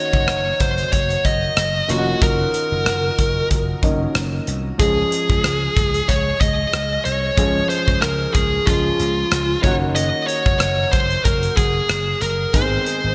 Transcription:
Already playing: grand piano D#3 A#3 C#4 F#4, lead electric guitar C#5
0.13 slap bass F#1, kick
0.28 slap bass F#1, lead electric guitar C#5, cross-stick, closed hi-hat
0.60 slap bass F#1, lead electric guitar C5, kick, closed hi-hat
0.78 closed hi-hat
0.92 slap bass F#1, lead electric guitar C#5, kick, closed hi-hat
1.10 closed hi-hat
1.25 slap bass F#1, lead electric guitar D#5, kick, closed hi-hat
1.57 slap bass F#1, cross-stick, closed hi-hat
1.88 slap bass F1, grand piano D#3 A#3 C#4 F4, lead electric guitar F#4, closed hi-hat
1.97 grand piano F#4
2.22 slap bass F#1, lead electric guitar A#4, kick, closed hi-hat
2.54 closed hi-hat
2.72 slap bass F#1
2.86 slap bass F#1, cross-stick, closed hi-hat
3.18 slap bass F#1, kick, closed hi-hat
3.51 slap bass F#1, kick, closed hi-hat
3.83 slap bass F#1, grand piano D#3 A#3 C#4 D#4, kick, closed hi-hat
4.15 slap bass F#1, cross-stick, closed hi-hat
4.47 slap bass C2, closed hi-hat
4.78 slap bass C#2, grand piano F3 G#3 C#4 G#4, lead electric guitar G#4, kick, closed hi-hat
5.12 closed hi-hat
5.29 slap bass C#2, kick
5.44 slap bass C#2, cross-stick, closed hi-hat
5.76 slap bass C#2, kick, closed hi-hat
5.94 closed hi-hat
6.08 slap bass C#2, lead electric guitar C#5, kick, closed hi-hat
6.41 slap bass C#2, lead electric guitar D#5, kick, closed hi-hat
6.73 slap bass C#2, cross-stick, closed hi-hat
7.05 slap bass C2, lead electric guitar C#5, closed hi-hat
7.37 slap bass C#2, grand piano F3 G#3 C#4 G#4, kick, closed hi-hat
7.69 lead electric guitar C5, closed hi-hat
7.88 slap bass C#2, kick
8.01 slap bass C#2, lead electric guitar A#4, cross-stick, closed hi-hat
8.34 slap bass C#2, lead electric guitar G#4, kick, closed hi-hat
8.66 slap bass C#2, grand piano F3 G#3 C#4 G#4, lead electric guitar F4, kick, closed hi-hat
9.00 slap bass C#2, closed hi-hat
9.31 slap bass C#2, cross-stick, closed hi-hat
9.63 slap bass F#1, grand piano D#3 A#3 C#4 F#4, lead electric guitar C#5, kick, closed hi-hat
9.95 lead electric guitar D#5, closed hi-hat
10.27 lead electric guitar C#5, closed hi-hat
10.46 slap bass F#1, kick
10.59 slap bass F#1, lead electric guitar C#5, cross-stick, closed hi-hat
10.92 slap bass F#1, lead electric guitar C5, kick, closed hi-hat
11.10 closed hi-hat
11.24 slap bass F#1, lead electric guitar A#4, kick, closed hi-hat
11.43 closed hi-hat
11.57 slap bass F#1, lead electric guitar G#4, kick, closed hi-hat
11.89 slap bass F#1, cross-stick, closed hi-hat
12.21 slap bass F#1, lead electric guitar A#4, closed hi-hat
12.53 slap bass G#1, grand piano D#3 G#3 B3 G#4, lead electric guitar C5, kick, closed hi-hat
12.61 grand piano C4
12.86 closed hi-hat
13.04 slap bass G#1

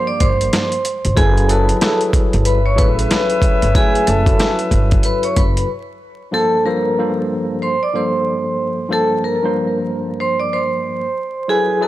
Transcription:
Already playing: tine electric piano G2 F3 A#3 A#4 C5, horn section A#3 G4 D5
0.07 vibraphone D5 D6
0.20 upright bass G1, vibraphone C5 C6, kick, closed hi-hat
0.41 closed hi-hat
0.53 snare, closed hi-hat
0.72 closed hi-hat
0.85 closed hi-hat
1.05 upright bass G1, closed hi-hat
1.15 upright bass F#1, tine electric piano F#3 E4 G#4 A4 B4, vibraphone G#4 G#5, kick, closed hi-hat
1.37 closed hi-hat
1.48 tine electric piano F#3 E4 G#4 A4 B4, vibraphone A4 A5, closed hi-hat
1.69 closed hi-hat
1.81 tine electric piano F#3 E4 G#4 A4 B4, snare, closed hi-hat
2.01 closed hi-hat
2.13 kick, closed hi-hat
2.33 upright bass G1, closed hi-hat
2.45 horn section C#4 B4 E5, vibraphone B4 B5, closed hi-hat
2.66 vibraphone C#5 C#6
2.76 upright bass A1, tine electric piano F#3 E4 G#4 A4 B4, vibraphone B4 B5, kick, closed hi-hat
2.99 closed hi-hat
3.11 snare, closed hi-hat
3.30 closed hi-hat
3.42 kick, closed hi-hat
3.62 upright bass G1, closed hi-hat
3.74 tine electric piano F#3 A3 E4 G#4 B4, vibraphone G#4 G#5, kick, closed hi-hat
3.95 closed hi-hat
4.07 upright bass F#1, vibraphone A4 A5, closed hi-hat
4.25 tine electric piano F#3 E4 F#4 A4 B4, kick, closed hi-hat
4.39 snare, closed hi-hat
4.59 closed hi-hat
4.71 upright bass G1, kick, closed hi-hat
4.91 kick, closed hi-hat
5.03 vibraphone B4 B5, closed hi-hat
5.23 vibraphone C#5 C#6, closed hi-hat
5.36 upright bass F#1, vibraphone B4 B5, kick, closed hi-hat
5.57 closed hi-hat
6.31 tine electric piano G2 F3 A#3 A4 C5, vibraphone A4 A5
6.65 tine electric piano G2 F3 A#3 A4 C5, vibraphone A#4 A#5
6.98 tine electric piano G2 F3 A#3 A4 C5
7.62 vibraphone C5 C6
7.83 vibraphone D5 D6
7.93 tine electric piano G2 F3 A#3 A4 C5, vibraphone C5 C6
8.89 tine electric piano G2 F3 A#3 A4 C5, vibraphone A4
8.94 vibraphone A5
9.24 vibraphone A#4 A#5
9.42 tine electric piano G2 F3 A#3 A#4 C5
10.20 vibraphone C5 C6
10.40 vibraphone D5 D6
10.53 vibraphone C5 C6
11.48 tine electric piano F#3 E4 G#4 A4 B4, vibraphone G#4 G#5
11.80 tine electric piano F#3 E4 G#4 A4 B4, vibraphone A4 A5

